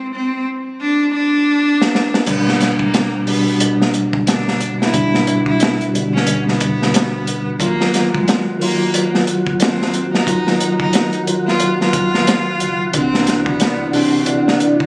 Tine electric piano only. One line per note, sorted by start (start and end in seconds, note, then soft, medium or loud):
2.26 3.23 B2 medium
2.26 3.24 G3 medium
2.26 3.25 D4 medium
3.26 4.90 B2 medium
3.26 4.91 G3 medium
3.26 4.91 D4 medium
4.93 5.25 B2 medium
4.93 5.25 G3 medium
4.93 5.26 D4 medium
5.93 7.57 B2 medium
5.93 7.58 D3 medium
5.93 7.57 G3 medium
7.60 8.57 D#3 medium
7.60 8.57 F#3 medium
7.60 8.58 F4 loud
8.60 10.23 D#3 medium
8.60 10.24 F#3 medium
8.60 10.25 F4 loud
10.27 10.58 D#3 medium
10.27 10.59 F#3 medium
10.27 10.59 F4 medium
11.26 12.90 D#3 medium
11.26 12.91 F#3 medium
11.26 12.91 F4 medium
12.93 13.90 C3 medium
12.93 13.91 E3 medium
12.93 13.91 D4 medium
13.93 14.86 C3 medium
13.93 14.86 E3 medium
13.93 14.86 D4 medium